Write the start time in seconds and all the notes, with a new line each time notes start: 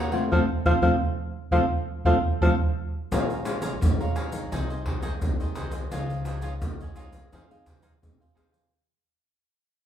Already playing: A#2 A#3 C#4 D#4 F#4 A#4 C#5 F#5
0.12 A3 C4 F4 A#4 C#5 F#5, pandeiro
0.32 F3 A3 C4 A4 C5 F5, surdo
0.66 F3 A3 C4 A4 C5 F5, surdo
0.82 F3 A3 C4 A4 C5 F5, surdo
1.51 F3 A3 C4 A4 C5 F5, surdo
2.05 F3 A3 C4 A4 C5 F5, surdo
2.41 F3 A3 C4 A4 C5 F5, surdo
3.12 A#1 A#2 G#3 C#4 F4 G#4 C#5 F5 A#5, pandeiro, maracas, surdo
3.30 pandeiro, maracas
3.45 G#3 C#4 F4 G#4 C#5 F5 A#5, pandeiro, maracas
3.62 G#4 C#5 F5 A#5, pandeiro, maracas
3.81 A#1 F2, pandeiro, maracas, surdo
4.00 G#3 C#4 F4 C#5 F5 A#5, pandeiro, maracas
4.16 G#4 C#5 F5 A#5, pandeiro, maracas
4.32 D#3 G#3 D#4, pandeiro, maracas
4.52 C2 C3 D#4 G#4 C5 D#5, pandeiro, maracas, surdo
4.70 G#4 C5 D#5, pandeiro, maracas
4.86 D#4 G#4 C5 D#5, pandeiro, surdo
5.02 D#3 G#3 D#4 G#4 C5 D#5, pandeiro, maracas
5.22 C2 C3, pandeiro, maracas, surdo
5.40 D#3 G#3 D#4 G#4 C5 D#5, pandeiro, maracas
5.55 C2 D#4 G#4 C5 D#5, pandeiro, maracas
5.71 G#4 C5 D#5, pandeiro, maracas
5.91 C#2 C#3 F3 G#3 D#4 F4 G#4 C#5 D#5, pandeiro, maracas, surdo
6.10 pandeiro, maracas
6.25 F4 G#4 C#5 D#5, pandeiro, maracas
6.42 F3 G#3 D#4 F4 G#4 C#5 D#5, pandeiro, maracas
6.62 C2 G#2, pandeiro, maracas, surdo
6.80 G#4 C#5 D#5, pandeiro, maracas
6.96 F3 G#3 D#4 F4 G#4 C#5 D#5, pandeiro, maracas
7.13 pandeiro, maracas
7.32 F2 F3 C4 D#4 G#4 C5 F5, pandeiro, maracas, surdo
7.51 C4 D#4 G#4 C5 F5, pandeiro, maracas
7.66 D#4 G#4 C5 F5, pandeiro, maracas, surdo
7.82 D#4 G#4 C5 F5, pandeiro, maracas
8.02 F2 C3 C4 D#4 G#4, pandeiro, maracas, surdo
8.20 G#4 C5 F5, pandeiro, maracas
8.35 F2 C4 D#4 G#4 C5 F5, pandeiro, maracas
8.51 G#4 C5 F5, pandeiro, maracas